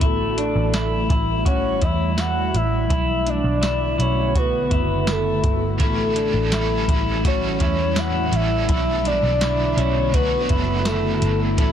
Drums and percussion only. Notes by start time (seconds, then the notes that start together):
0.01 kick, closed hi-hat
0.38 closed hi-hat
0.74 snare, closed hi-hat, tambourine
1.10 kick, closed hi-hat
1.46 kick, closed hi-hat
1.82 kick, closed hi-hat
2.18 snare, closed hi-hat, tambourine
2.55 closed hi-hat
2.90 kick, closed hi-hat
3.27 closed hi-hat
3.63 snare, closed hi-hat, tambourine
4.00 closed hi-hat
4.35 kick, closed hi-hat
4.71 kick, closed hi-hat
5.07 snare, closed hi-hat, tambourine
5.44 kick, closed hi-hat
5.80 kick, closed hi-hat
6.16 closed hi-hat
6.52 snare, closed hi-hat, tambourine
6.88 kick, closed hi-hat
7.24 kick, closed hi-hat
7.60 kick, closed hi-hat
7.96 snare, closed hi-hat, tambourine
8.33 closed hi-hat
8.69 kick, closed hi-hat
9.05 closed hi-hat
9.41 snare, closed hi-hat, tambourine
9.78 closed hi-hat
10.13 kick, closed hi-hat
10.49 kick, closed hi-hat
10.85 snare, closed hi-hat, tambourine
11.22 closed hi-hat
11.58 kick, closed hi-hat